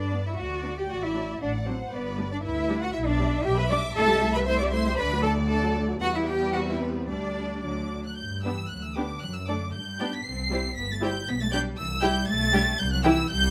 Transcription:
Already playing: double bass section G2, cello section D4, violin section B4 D5
0.12 viola section B3 D4
0.26 cello section E4, violin section E5
0.38 double bass section D2, cello section F#4, violin section D5 F#5
0.63 viola section B3 D4
0.78 cello section G4, violin section G5
0.90 double bass section A1, cello section F#4, violin section D5 F#5
1.04 cello section E4, violin section E5
1.15 viola section F#3 D4
1.40 double bass section A1, cello section D4, violin section D5 F#5
1.67 viola section F#3 D4, cello section C4, violin section C5
1.92 double bass section G1, cello section B3, violin section B4 D5
2.18 viola section G3 D4
2.32 cello section D4, violin section D5
2.43 double bass section D2, cello section E4, violin section B4 E5
2.69 viola section G3 D4
2.81 cello section F#4, violin section F#5
2.93 double bass section B1, cello section E4, violin section E5
3.08 cello section D4, violin section D5
3.20 viola section G3 D4
3.44 double bass section B1, cello section G4, violin section G5
3.57 cello section B4, violin section B5
3.70 viola section G3 D4, cello section D5, violin section D6
3.95 double bass section C2, viola section A3 E4, cello section A4, violin section A5
4.09 viola section G3 G4
4.22 viola section A3 E4
4.34 viola section G3 G4, cello section B4, violin section B5
4.47 viola section A3 E4, cello section C5, violin section C6
4.58 viola section G3 G4, cello section D5, violin section D6
4.72 viola section A3 E4, cello section C5, violin section C6
4.87 viola section G3 G4
4.98 double bass section D2, viola section A3 D4, cello section B4, violin section D5 B5
5.13 viola section F#3 F#4
5.23 viola section A3 D4, cello section A4, violin section A5
5.38 viola section F#3 F#4
5.49 viola section A3 D4, cello section A4, violin section A5
5.63 viola section F#3 F#4
5.75 viola section A3 D4
5.89 viola section F#3 F#4
6.00 double bass section E2, viola section G3 B3, cello section F#4, violin section B4 F#5
6.14 cello section E4, violin section E5
6.26 cello section G4, violin section G5
6.53 viola section C4, cello section F#4, violin section F#5
6.67 cello section E4, violin section E5
6.81 cello section B3, violin section B4
7.07 double bass section D2, viola section G3 D4, cello section D4, violin section D5
7.62 double bass section D2, cello section D3, viola section F#3 D4, violin section D6
8.05 cello section F#3, violin section F#6
8.17 double bass section G2, cello section G3, violin section G6
8.43 cello section E3, viola section B3 D4, violin section G4 B4 E6
8.68 double bass section D2, cello section F#3, violin section F#6
8.83 cello section E3, violin section E6
8.95 cello section D3, viola section B3 D4, violin section G4 B4 D6
9.21 double bass section F#2, cello section F#3, violin section F#6
9.34 cello section E3, violin section E6
9.46 cello section D3, viola section A3 D4, violin section A4 D5 D6
9.73 double bass section G2, cello section G3, violin section G6
9.99 viola section B3 D4, violin section G4 D5
10.13 cello section B3, violin section B6
10.24 double bass section C2, cello section C4, violin section C7
10.50 viola section G3 E4, violin section G4 C5
10.76 double bass section G1, cello section B3, violin section B6
10.91 cello section A3, violin section A6
11.01 viola section G3 E4, cello section G3, violin section G4 C5 G6
11.28 double bass section B1, cello section B3, violin section B6
11.41 cello section A3, violin section A6
11.52 viola section G3 D4, cello section G3, violin section G4 D5 G6
11.78 double bass section C2, cello section E3, violin section E6
12.01 viola section G3 E4, cello section G3, violin section G4 G5 G6
12.28 double bass section B1, cello section A3, violin section A6
12.53 viola section G3 D4, violin section G4 G5
12.79 double bass section C2, cello section G3, violin section G6
12.92 cello section F#3, violin section F#6
13.04 viola section E3 E4, cello section E3, violin section G4 G5 E6
13.30 double bass section C2, cello section G3, violin section G6

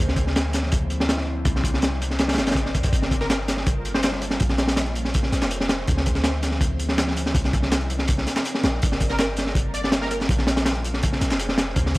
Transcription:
0.00 808-style bass D2
0.08 snare
0.16 kick, closed hi-hat
0.26 ambient pad D3 F3 C4 E4, snare
0.36 snare, closed hi-hat
0.53 snare, closed hi-hat
0.63 snare
0.72 kick, closed hi-hat
0.90 closed hi-hat
1.00 snare
1.09 snare, closed hi-hat
1.18 snare
1.45 808-style bass C2, kick, closed hi-hat
1.56 snare
1.64 kick, closed hi-hat
1.74 ambient pad C4 D#4 A#4 D5, snare
1.82 snare, closed hi-hat
2.02 closed hi-hat
2.11 snare
2.19 snare, closed hi-hat
2.28 snare, closed hi-hat
2.33 snare, closed hi-hat
2.38 808-style bass G1, snare, closed hi-hat
2.47 snare, closed hi-hat
2.51 kick, snare, closed hi-hat
2.56 closed hi-hat
2.66 snare
2.75 808-style bass F2, kick, closed hi-hat
2.83 kick, closed hi-hat
2.93 808-style bass G1, kick, closed hi-hat
3.02 snare
3.11 kick, closed hi-hat
3.21 ambient pad G3 A#3 F4 A4, digital synth lead A#4, snare
3.30 digital synth lead A#4, snare, closed hi-hat
3.48 snare, closed hi-hat
3.57 snare
3.66 kick, closed hi-hat
3.85 closed hi-hat
3.94 digital synth lead C5, snare
4.03 digital synth lead C5, snare, closed hi-hat
4.12 snare
4.22 closed hi-hat
4.31 snare
4.40 808-style bass A#1, kick, closed hi-hat
4.49 snare
4.58 snare, closed hi-hat
4.68 ambient pad A#3 C#4 G#4 C5, snare, closed hi-hat
4.76 snare, closed hi-hat
4.86 closed hi-hat
4.95 closed hi-hat
5.05 snare
5.14 kick, closed hi-hat
5.23 snare
5.32 808-style bass A#1, snare, closed hi-hat
5.42 808-style bass F1, snare
5.51 closed hi-hat
5.60 snare
5.69 snare, closed hi-hat
5.88 808-style bass D2, kick, closed hi-hat
5.97 snare
6.06 kick, closed hi-hat
6.15 ambient pad D3 F3 C4 E4, snare
6.24 snare, closed hi-hat
6.43 snare, closed hi-hat
6.51 snare
6.61 kick, closed hi-hat
6.79 closed hi-hat
6.89 snare
6.98 snare, closed hi-hat
7.08 snare
7.16 closed hi-hat
7.26 snare
7.35 808-style bass C2, kick, closed hi-hat
7.44 snare
7.53 kick, closed hi-hat
7.62 ambient pad C4 D#4 A#4 D5, snare
7.72 snare, closed hi-hat
7.81 closed hi-hat
7.90 closed hi-hat
7.99 snare
8.08 kick, closed hi-hat
8.18 snare
8.27 snare, closed hi-hat
8.36 snare
8.45 closed hi-hat
8.55 snare
8.63 808-style bass A#1, snare, closed hi-hat
8.82 808-style bass G1, kick, closed hi-hat
8.92 snare
9.00 kick, closed hi-hat
9.10 ambient pad G3 A#3 F4 A4, digital synth lead A#4, snare
9.19 digital synth lead A#4, snare, closed hi-hat
9.37 snare, closed hi-hat
9.47 snare
9.55 kick, closed hi-hat
9.74 digital synth lead D5, closed hi-hat
9.84 digital synth lead D5, snare
9.92 snare, closed hi-hat
10.02 digital synth lead A#4, snare
10.11 digital synth lead A#4, closed hi-hat
10.20 snare
10.29 808-style bass A#1, kick, closed hi-hat
10.31 closed hi-hat
10.39 snare
10.47 snare, closed hi-hat
10.57 ambient pad A#3 C#4 G#4 C5, snare, closed hi-hat
10.65 snare, closed hi-hat
10.75 closed hi-hat
10.84 closed hi-hat
10.94 snare
11.03 kick, closed hi-hat
11.13 snare
11.21 808-style bass A#1, snare, closed hi-hat
11.30 808-style bass F1, snare
11.39 closed hi-hat
11.49 snare
11.58 snare, closed hi-hat
11.76 808-style bass D2, kick, closed hi-hat
11.86 snare
11.95 closed hi-hat

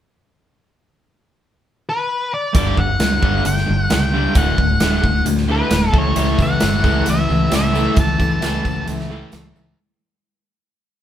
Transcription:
1.89 lead electric guitar B4
2.34 lead electric guitar D5
2.55 picked electric bass G1, distorted electric guitar G2 D3 G3, lead electric guitar D5, kick, closed hi-hat
2.77 picked electric bass G1, distorted electric guitar G2 D3, lead electric guitar F#5, kick
3.00 picked electric bass D2, distorted electric guitar G2 D3, snare, closed hi-hat
3.22 picked electric bass G1, distorted electric guitar G2 D3 G3, kick
3.45 picked electric bass G1, distorted electric guitar G2 D3, lead electric guitar G5, closed hi-hat
3.57 snare
3.67 picked electric bass G1, distorted electric guitar G2 D3
3.90 picked electric bass C#2, distorted electric guitar G2 D3, lead electric guitar G5, snare, closed hi-hat
4.13 distorted electric guitar G2 D3 G3
4.35 picked electric bass D1, distorted electric guitar D2 A2 D3, lead electric guitar F#5, kick, closed hi-hat
4.57 picked electric bass D1, distorted electric guitar D2 A2, kick
4.80 picked electric bass D1, distorted electric guitar D2 A2 D3, snare, closed hi-hat
5.03 picked electric bass D1, distorted electric guitar D2 A2, kick
5.25 distorted electric guitar D2 A2, picked electric bass D2, closed hi-hat
5.37 snare
5.47 distorted electric guitar D2 A2 D3
5.51 lead electric guitar B4
5.71 picked electric bass D1, distorted electric guitar D2 A2, snare, closed hi-hat
5.92 picked electric bass C#2, distorted electric guitar A2 E3 A3, kick
5.98 lead electric guitar C#5
6.15 picked electric bass C#2, distorted electric guitar A2 E3 A3, closed hi-hat
6.20 lead electric guitar C#5
6.39 picked electric bass C#2, distorted electric guitar A2 E3, overdriven electric guitar A3, lead electric guitar F#5, kick, tambourine
6.60 picked electric bass G1, distorted electric guitar A2 E3, overdriven electric guitar A3, snare, closed hi-hat, tambourine
6.84 picked electric bass C#2, distorted electric guitar A2 E3 A3, kick, tambourine
7.06 picked electric bass C#2, distorted electric guitar A2 E3, overdriven electric guitar A3, lead electric guitar E5, closed hi-hat, tambourine
7.29 picked electric bass C#2, distorted electric guitar A2 E3, overdriven electric guitar A3, tambourine
7.52 picked electric bass C#2, distorted electric guitar A2 E3, overdriven electric guitar A3, lead electric guitar E5, snare, closed hi-hat, tambourine
7.75 distorted electric guitar A2 E3 A3, tambourine
7.97 picked electric bass C#2, distorted electric guitar A2 E3, overdriven electric guitar A3, lead electric guitar A5, kick, closed hi-hat, tambourine
8.20 picked electric bass C#2, distorted electric guitar A2 E3, overdriven electric guitar A3, kick, tambourine
8.42 picked electric bass C#2, distorted electric guitar A2 E3 A3, snare, closed hi-hat, tambourine
8.65 picked electric bass C#2, distorted electric guitar A2 E3, overdriven electric guitar A3, kick, tambourine
8.87 picked electric bass C#2, distorted electric guitar A2 E3, overdriven electric guitar A3, closed hi-hat, tambourine
8.99 snare
9.11 distorted electric guitar A2 E3 A3, tambourine
9.32 picked electric bass C#2, distorted electric guitar A2 E3, overdriven electric guitar A3, snare, closed hi-hat, tambourine
9.56 picked electric bass C#2, distorted electric guitar A2 E3, overdriven electric guitar A3, tambourine

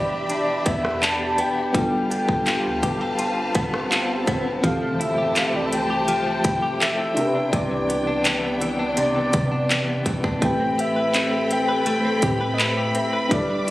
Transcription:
Already playing: 808-style bass E1, fm electric piano B2 D4 E4 G4, clean electric guitar E3 B3 D4 G4, string section G4 D5 E5 B5, soft synth lead D5
0.30 clean electric guitar D4, closed hi-hat
0.66 808-style bass E2, clean electric guitar B3, soft synth lead E5, kick, closed hi-hat
0.85 cross-stick
1.02 clean electric guitar D4, soft synth lead A5, clap, closed hi-hat
1.38 clean electric guitar B3, soft synth lead G5, closed hi-hat
1.73 808-style bass G1, clean electric guitar G3, fm electric piano B3 D4 F4, string section B4 F5 A5, kick, closed hi-hat, swell
1.78 fm electric piano A4
2.11 clean electric guitar B3, closed hi-hat
2.29 808-style bass G1, kick
2.47 clean electric guitar F4, clap, closed hi-hat
2.65 808-style bass D2
2.83 808-style bass G1, clean electric guitar G4, kick, closed hi-hat
3.01 clean electric guitar A4
3.19 clean electric guitar F4, closed hi-hat
3.55 808-style bass G1, clean electric guitar B3, kick, closed hi-hat
3.74 cross-stick
3.91 clean electric guitar F4, clap, closed hi-hat
4.27 808-style bass G1, clean electric guitar B3, kick, closed hi-hat
4.62 808-style bass F1, fm electric piano E3 C4, clean electric guitar F3, string section G4 C5 G5 A5, soft synth lead F5, kick, closed hi-hat, impact
4.66 fm electric piano G4 A4
4.82 clean electric guitar A3
5.00 clean electric guitar E4, soft synth lead E5, closed hi-hat
5.18 clean electric guitar G4
5.36 clean electric guitar A3, soft synth lead F5, clap, closed hi-hat
5.47 soft synth lead E5
5.54 808-style bass C2, clean electric guitar E4, soft synth lead D5
5.66 soft synth lead E5
5.72 clean electric guitar A3, soft synth lead G5, closed hi-hat
5.90 clean electric guitar G4
6.08 clean electric guitar F3, closed hi-hat
6.26 clean electric guitar A3
6.44 808-style bass F1, clean electric guitar E4, kick, closed hi-hat
6.62 clean electric guitar G4
6.81 clean electric guitar A3, soft synth lead E5, clap, closed hi-hat
6.99 808-style bass E1, clean electric guitar E4
7.15 clean electric guitar C3, string section B3 D5, fm electric piano D4 E4, closed hi-hat
7.19 fm electric piano G4 A#4
7.27 fm electric piano B4
7.35 clean electric guitar D4
7.53 808-style bass C2, clean electric guitar C3, soft synth lead D5, kick, closed hi-hat
7.71 clean electric guitar E3
7.89 clean electric guitar B3, closed hi-hat
8.07 clean electric guitar D4
8.25 clean electric guitar E3, clap, closed hi-hat
8.43 clean electric guitar B3
8.61 clean electric guitar E3, closed hi-hat
8.79 clean electric guitar D4
8.97 clean electric guitar C3, soft synth lead D5, closed hi-hat
9.15 clean electric guitar E3
9.33 808-style bass C3, clean electric guitar B3, kick, closed hi-hat
9.52 clean electric guitar D4
9.70 clean electric guitar E3, clap, closed hi-hat
9.88 clean electric guitar B3
10.06 808-style bass C2, clean electric guitar E3, kick, closed hi-hat
10.24 808-style bass C2, clean electric guitar D4, kick
10.40 808-style bass A1, clean electric guitar A3, fm electric piano C4 E4 G4, string section C4 A4 G5 B5, kick, closed hi-hat
10.44 fm electric piano B4, soft synth lead G5
10.60 clean electric guitar C4
10.78 clean electric guitar G4, soft synth lead E5, closed hi-hat
10.96 clean electric guitar B4
11.14 clean electric guitar C4, clap, closed hi-hat
11.32 clean electric guitar G4
11.50 clean electric guitar C4, soft synth lead G5, closed hi-hat
11.68 clean electric guitar B4
11.86 clean electric guitar A3, closed hi-hat
12.05 clean electric guitar C4
12.22 808-style bass A2, fm electric piano C4 E4 G4 B4, clean electric guitar G4, kick, closed hi-hat
12.41 clean electric guitar B4
12.54 soft synth lead D#5
12.59 clean electric guitar C4, soft synth lead E5, clap, closed hi-hat
12.77 clean electric guitar G4
12.95 clean electric guitar C4, closed hi-hat
13.13 clean electric guitar B4
13.29 808-style bass G1, clean electric guitar G3, string section C4 E5 D6, fm electric piano D4 E4, kick, closed hi-hat
13.33 fm electric piano G4 A4, soft synth lead D5
13.41 fm electric piano B4
13.49 clean electric guitar D4
13.67 clean electric guitar E4

